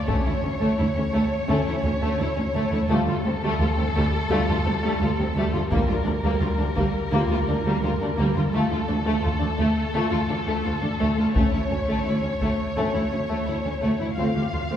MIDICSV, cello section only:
0, 0, Header, 1, 2, 480
1, 0, Start_track
1, 0, Tempo, 704225
1, 59, Time_signature, 4, 2, 24, 8
1, 10065, End_track
2, 0, Start_track
2, 0, Title_t, "Cello section"
2, 0, Program_c, 0, 48
2, 59, Note_on_c, 0, 38, 45
2, 107, Note_off_c, 0, 38, 0
2, 183, Note_on_c, 0, 38, 39
2, 230, Note_off_c, 0, 38, 0
2, 298, Note_on_c, 0, 38, 33
2, 346, Note_off_c, 0, 38, 0
2, 419, Note_on_c, 0, 38, 51
2, 467, Note_off_c, 0, 38, 0
2, 543, Note_on_c, 0, 38, 42
2, 590, Note_off_c, 0, 38, 0
2, 664, Note_on_c, 0, 38, 37
2, 711, Note_off_c, 0, 38, 0
2, 785, Note_on_c, 0, 38, 52
2, 832, Note_off_c, 0, 38, 0
2, 1023, Note_on_c, 0, 38, 54
2, 1070, Note_off_c, 0, 38, 0
2, 1139, Note_on_c, 0, 38, 37
2, 1187, Note_off_c, 0, 38, 0
2, 1260, Note_on_c, 0, 38, 41
2, 1308, Note_off_c, 0, 38, 0
2, 1380, Note_on_c, 0, 38, 54
2, 1427, Note_off_c, 0, 38, 0
2, 1501, Note_on_c, 0, 38, 37
2, 1548, Note_off_c, 0, 38, 0
2, 1619, Note_on_c, 0, 38, 36
2, 1667, Note_off_c, 0, 38, 0
2, 1734, Note_on_c, 0, 38, 59
2, 1783, Note_off_c, 0, 38, 0
2, 1855, Note_on_c, 0, 38, 40
2, 1903, Note_off_c, 0, 38, 0
2, 1974, Note_on_c, 0, 38, 54
2, 2023, Note_off_c, 0, 38, 0
2, 2098, Note_on_c, 0, 38, 41
2, 2146, Note_off_c, 0, 38, 0
2, 2216, Note_on_c, 0, 38, 41
2, 2264, Note_off_c, 0, 38, 0
2, 2337, Note_on_c, 0, 38, 59
2, 2385, Note_off_c, 0, 38, 0
2, 2457, Note_on_c, 0, 38, 40
2, 2505, Note_off_c, 0, 38, 0
2, 2581, Note_on_c, 0, 38, 39
2, 2628, Note_off_c, 0, 38, 0
2, 2698, Note_on_c, 0, 38, 51
2, 2745, Note_off_c, 0, 38, 0
2, 2937, Note_on_c, 0, 38, 57
2, 2985, Note_off_c, 0, 38, 0
2, 3064, Note_on_c, 0, 38, 41
2, 3110, Note_off_c, 0, 38, 0
2, 3181, Note_on_c, 0, 38, 40
2, 3228, Note_off_c, 0, 38, 0
2, 3301, Note_on_c, 0, 38, 58
2, 3347, Note_off_c, 0, 38, 0
2, 3420, Note_on_c, 0, 38, 43
2, 3467, Note_off_c, 0, 38, 0
2, 3541, Note_on_c, 0, 38, 42
2, 3588, Note_off_c, 0, 38, 0
2, 3661, Note_on_c, 0, 38, 59
2, 3708, Note_off_c, 0, 38, 0
2, 3785, Note_on_c, 0, 38, 41
2, 3831, Note_off_c, 0, 38, 0
2, 3896, Note_on_c, 0, 38, 55
2, 3944, Note_off_c, 0, 38, 0
2, 4015, Note_on_c, 0, 38, 44
2, 4063, Note_off_c, 0, 38, 0
2, 4130, Note_on_c, 0, 38, 38
2, 4179, Note_off_c, 0, 38, 0
2, 4254, Note_on_c, 0, 38, 58
2, 4302, Note_off_c, 0, 38, 0
2, 4372, Note_on_c, 0, 38, 43
2, 4420, Note_off_c, 0, 38, 0
2, 4494, Note_on_c, 0, 38, 39
2, 4542, Note_off_c, 0, 38, 0
2, 4614, Note_on_c, 0, 38, 57
2, 4662, Note_off_c, 0, 38, 0
2, 4852, Note_on_c, 0, 38, 58
2, 4901, Note_off_c, 0, 38, 0
2, 4974, Note_on_c, 0, 38, 40
2, 5023, Note_off_c, 0, 38, 0
2, 5097, Note_on_c, 0, 38, 38
2, 5144, Note_off_c, 0, 38, 0
2, 5216, Note_on_c, 0, 38, 57
2, 5264, Note_off_c, 0, 38, 0
2, 5337, Note_on_c, 0, 38, 39
2, 5385, Note_off_c, 0, 38, 0
2, 5458, Note_on_c, 0, 38, 38
2, 5505, Note_off_c, 0, 38, 0
2, 5577, Note_on_c, 0, 38, 61
2, 5625, Note_off_c, 0, 38, 0
2, 5700, Note_on_c, 0, 38, 36
2, 5747, Note_off_c, 0, 38, 0
2, 5819, Note_on_c, 0, 38, 52
2, 5866, Note_off_c, 0, 38, 0
2, 5939, Note_on_c, 0, 38, 40
2, 5986, Note_off_c, 0, 38, 0
2, 6063, Note_on_c, 0, 38, 35
2, 6110, Note_off_c, 0, 38, 0
2, 6181, Note_on_c, 0, 38, 55
2, 6228, Note_off_c, 0, 38, 0
2, 6301, Note_on_c, 0, 38, 42
2, 6348, Note_off_c, 0, 38, 0
2, 6422, Note_on_c, 0, 38, 33
2, 6469, Note_off_c, 0, 38, 0
2, 6543, Note_on_c, 0, 38, 45
2, 6590, Note_off_c, 0, 38, 0
2, 6780, Note_on_c, 0, 38, 53
2, 6827, Note_off_c, 0, 38, 0
2, 6902, Note_on_c, 0, 38, 37
2, 6949, Note_off_c, 0, 38, 0
2, 7024, Note_on_c, 0, 38, 37
2, 7071, Note_off_c, 0, 38, 0
2, 7143, Note_on_c, 0, 38, 48
2, 7190, Note_off_c, 0, 38, 0
2, 7258, Note_on_c, 0, 38, 39
2, 7306, Note_off_c, 0, 38, 0
2, 7378, Note_on_c, 0, 38, 33
2, 7426, Note_off_c, 0, 38, 0
2, 7503, Note_on_c, 0, 38, 49
2, 7550, Note_off_c, 0, 38, 0
2, 7620, Note_on_c, 0, 38, 32
2, 7668, Note_off_c, 0, 38, 0
2, 7741, Note_on_c, 0, 38, 46
2, 7788, Note_off_c, 0, 38, 0
2, 7865, Note_on_c, 0, 38, 33
2, 7911, Note_off_c, 0, 38, 0
2, 7988, Note_on_c, 0, 38, 32
2, 8034, Note_off_c, 0, 38, 0
2, 8101, Note_on_c, 0, 38, 48
2, 8148, Note_off_c, 0, 38, 0
2, 8225, Note_on_c, 0, 38, 34
2, 8272, Note_off_c, 0, 38, 0
2, 8339, Note_on_c, 0, 38, 29
2, 8387, Note_off_c, 0, 38, 0
2, 8464, Note_on_c, 0, 38, 43
2, 8511, Note_off_c, 0, 38, 0
2, 8705, Note_on_c, 0, 38, 45
2, 8752, Note_off_c, 0, 38, 0
2, 8827, Note_on_c, 0, 38, 34
2, 8874, Note_off_c, 0, 38, 0
2, 8944, Note_on_c, 0, 38, 31
2, 8991, Note_off_c, 0, 38, 0
2, 9069, Note_on_c, 0, 38, 37
2, 9116, Note_off_c, 0, 38, 0
2, 9190, Note_on_c, 0, 38, 31
2, 9236, Note_off_c, 0, 38, 0
2, 9307, Note_on_c, 0, 38, 30
2, 9354, Note_off_c, 0, 38, 0
2, 9423, Note_on_c, 0, 38, 40
2, 9471, Note_off_c, 0, 38, 0
2, 9541, Note_on_c, 0, 38, 26
2, 9589, Note_off_c, 0, 38, 0
2, 9667, Note_on_c, 0, 38, 32
2, 9714, Note_off_c, 0, 38, 0
2, 9784, Note_on_c, 0, 38, 30
2, 9832, Note_off_c, 0, 38, 0
2, 9900, Note_on_c, 0, 38, 24
2, 9949, Note_off_c, 0, 38, 0
2, 10021, Note_on_c, 0, 38, 38
2, 10065, Note_off_c, 0, 38, 0
2, 10065, End_track
0, 0, End_of_file